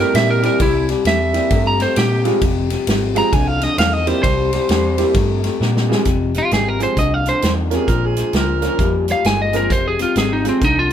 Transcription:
Already playing: C3 G3 A3 A#3 C4 E4 G4
0.00 A#4
0.14 A#2 C3 A#3 E5, snare, ride
0.30 A#4
0.42 C3 G3 A#3 C4 E4 G4 A#4, snare, ride
0.60 C2 C3 G3 E4, kick, snare, ride
0.89 C3 G3, snare, ride
1.05 E2 C3 G3 E5, snare, ride
1.33 C3 G3 A#3 C4 E4 G4, snare, ride
1.51 G2 C3 A3, kick, snare, ride
1.67 A#5
1.79 C3 A3 C5, snare, ride
1.96 A#2 C3 A#3 G4, snare, ride
2.24 C3 F3 G3 G#3 C4 F4 G#4, snare, ride
2.42 F1 F2 C3, kick, snare, ride
2.70 F2 C3, snare, ride
2.87 G#1 F2 C3, snare, ride
3.15 F2 C3 F3 G#3 C4 F4 G#4 A#5, snare, ride
3.32 C2 F2 D3 G#5, kick, snare, ride
3.48 F5
3.60 F2 D3 D#5, snare, ride
3.78 E2 F2 D#3 F5, snare, ride
3.93 D#5
4.06 F2 C3 G3 A#3 C4 E4 G4 C5, snare, ride
4.23 C2 C3 G3 C5, kick, snare, ride
4.53 C3 G3, snare, ride
4.69 E2 C3 G3, snare, ride
4.98 C3 G3 A#3 C4 E4 G4, snare, ride
5.14 G2 C3 A3, kick, snare, ride
5.43 C3 A3, snare, ride
5.60 A#2 C3 A#3, snare
5.77 snare
5.88 C3 F3 G3 G#3 C4 F4 G#4, snare
6.05 F1 F2 C3, kick, snare, closed hi-hat
6.34 F2 C3 F4, snare, closed hi-hat
6.51 G#1 F2 C3 G#4, snare, closed hi-hat
6.68 A#4
6.79 F2 C3 F3 G#3 C4 F4 G#4, snare, closed hi-hat
6.83 C5
6.97 C2 F2 D3 D#5, kick, snare, closed hi-hat
7.14 F5
7.26 F2 D3 C5, snare, closed hi-hat
7.42 E2 F2 D#3, snare, closed hi-hat
7.70 F2 C3 F3 A#3 C#4 F4 A#4, snare, closed hi-hat
7.76 G#4
7.88 A#1 A#2 F3 A#4, kick, snare, closed hi-hat
8.06 G#4
8.17 A#2 F3, snare, closed hi-hat
8.33 C#2 A#2 F3 A#4, snare, closed hi-hat
8.61 A#2 F3 A#3 C#4 F4 A#4, snare, closed hi-hat
8.67 A#4
8.79 F2 A#2 G3, kick, snare, closed hi-hat
9.08 A#2 G3 F5, snare, closed hi-hat
9.25 G1 A#2 G#3 G#5, snare, closed hi-hat
9.42 D#5
9.53 A#2 F3 G#3 C4 F4 A#4, snare, closed hi-hat
9.70 F1 F2 C3 C5, kick, snare, closed hi-hat
9.88 G#4
9.99 F2 C3 F4, snare, closed hi-hat
10.16 G#1 F2 C3 G#4, snare, closed hi-hat
10.33 D#4
10.43 F2 C3 F3 G#3 C4 F4 G#4, snare, closed hi-hat
10.49 C4
10.61 C2 F2 D3 D#4, kick, snare, closed hi-hat
10.79 F4

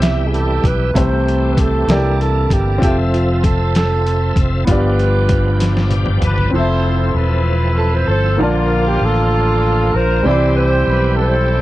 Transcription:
Already playing: C2 B2 C3 E3 G3 E4 G4 E5
0.02 E5, snare, closed hi-hat
0.27 G#4
0.34 A4, closed hi-hat
0.64 B1 B4, kick, closed hi-hat
0.94 C2 C3 E3 A3 C4 E4 G4 C5, kick, closed hi-hat
1.28 closed hi-hat
1.52 B4
1.57 A4, kick, closed hi-hat
1.88 C2 C3 D#3 A#3 D4 E4 A4 D5, snare, closed hi-hat
1.92 G4
1.97 E3
2.21 A4, closed hi-hat
2.50 G1 G4, kick, closed hi-hat
2.78 C4 F4, kick
2.82 F1 F3 C4 G4 A4 E5, closed hi-hat
3.14 F4, closed hi-hat
3.44 A4, kick, closed hi-hat
3.75 A4, snare, closed hi-hat
4.07 closed hi-hat
4.36 F1, kick, closed hi-hat
4.64 G1 G2 B3 F4 B4, kick, closed hi-hat
4.68 F3 B3 D4 G4 D5
4.99 closed hi-hat
5.29 kick, closed hi-hat
5.60 snare, closed hi-hat
5.77 snare
5.90 G5, closed hi-hat, high tom
6.06 mid tom
6.22 G1 B4 A5, closed hi-hat, mid tom
6.38 floor tom
6.51 F1 F3 C4 E4 C5
6.55 F3 C4 E4 A4 E5
7.14 E1 E4 B4
7.78 A4
7.95 C5
8.07 G1 A4 C5
8.37 A#1 D3 F3 A#3 D4 F4
8.41 A#3 D4 A#4 D5 A5
8.87 G4
9.01 A1 A4
9.93 A#1 A#4 C5
10.23 C2 E3 G3 C4 E4 G4 C5 D5
10.27 E4 G4 B5
10.56 C5
10.87 B1 B4
11.17 E4 A4 C5

